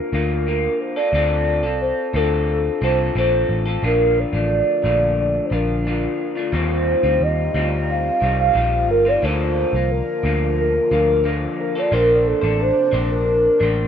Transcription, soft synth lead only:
Already playing: A#4
0.80 C5
0.97 D5
1.82 C5
2.16 A4
2.50 A4
2.84 C5
3.17 C5
3.85 A#4
4.19 D5
5.20 D5
5.45 C5
5.53 A#4
6.55 C5
7.22 D#5
7.90 F5
8.40 F5
8.91 A#4
9.08 D5
9.24 C5
9.91 A#4
10.59 A#4
11.61 A#4
11.78 D5
11.93 A#4
12.27 A4
12.61 C5
13.12 A#4

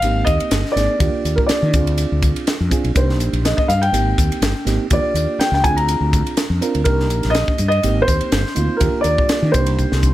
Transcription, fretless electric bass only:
0.02 G#1
0.27 D#2
0.41 muted fretless electric bass stroke
0.52 G1
0.76 G#1
1.00 D#2
1.14 muted fretless electric bass stroke
1.25 D#2
1.50 muted fretless electric bass stroke
1.62 D#3
1.74 D2
2.12 D2
2.61 F2
2.84 B1
2.96 C2
3.19 A#1
3.33 A#1
3.58 muted fretless electric bass stroke
3.69 G2
3.93 G#1
4.18 D#2
4.30 muted fretless electric bass stroke
4.41 G1
4.66 G#1
4.91 D#2
5.03 muted fretless electric bass stroke
5.14 D#2
5.39 muted fretless electric bass stroke
5.52 C#2
5.64 D2
6.01 D2
6.50 F2
6.75 D2
6.86 C2
7.11 A#1
7.25 A#1
7.48 muted fretless electric bass stroke
7.59 G2
7.84 G#1
8.08 D#2
8.21 muted fretless electric bass stroke
8.32 G1
8.57 D2
8.81 D#2
8.93 muted fretless electric bass stroke
9.04 D#2
9.30 muted fretless electric bass stroke
9.42 D#3
9.54 C2
9.92 C2

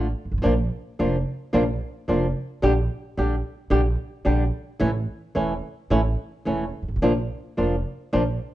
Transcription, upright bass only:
Already playing: A1
0.25 G1
0.32 G#1
0.38 A1
0.46 A#1
1.00 F1
1.54 A#1
2.09 F1
2.63 A#1
3.18 A#1
3.71 A#1
4.26 A#1
4.81 A1
5.36 E1
5.91 A1
6.47 E1
6.82 G1
6.88 G#1
6.96 A1
7.03 A#1
7.58 F1
8.14 A#1

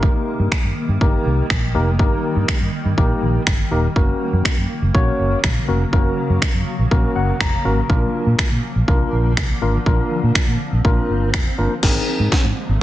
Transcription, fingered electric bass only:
0.40 G2
0.52 muted fingered electric bass stroke
0.64 G2
0.89 G2
1.01 G1
1.26 C2
1.50 A#1
1.75 F1
1.99 G1
2.36 G2
2.48 muted fingered electric bass stroke
2.61 G2
2.85 G2
2.98 A#1
3.22 A#1
3.47 G1
3.71 D#1
3.96 F#1
4.33 F#2
4.45 muted fingered electric bass stroke
4.58 F#2
4.82 F#1
4.95 A#1
5.19 F#1
5.44 A#1
5.69 F1
5.93 F#1
6.30 F#2
6.42 muted fingered electric bass stroke
6.54 F#2
6.79 A#1
6.91 A#1
7.16 F#1
7.41 F1
7.65 G#1
7.90 A#1
8.27 A#2
8.39 muted fingered electric bass stroke
8.51 A#2
8.76 A#1
8.88 C2
9.13 A#1
9.37 C2
9.62 G#1
9.86 A#1
10.23 A#2
10.35 muted fingered electric bass stroke
10.48 A#2
10.72 A#1
10.85 A#1
11.09 G1
11.34 F1
11.58 G1
11.83 G#1
12.20 G#2
12.32 muted fingered electric bass stroke
12.44 G#2
12.69 G#1

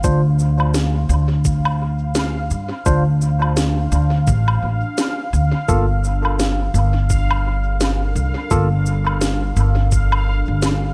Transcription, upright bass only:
0.04 D2
1.09 D2
2.51 G2
2.86 D2
3.92 D2
4.27 A1
4.62 A1
5.33 D2
5.69 G1
6.74 G1
8.15 C2
8.51 G1
9.56 G1
10.48 G1

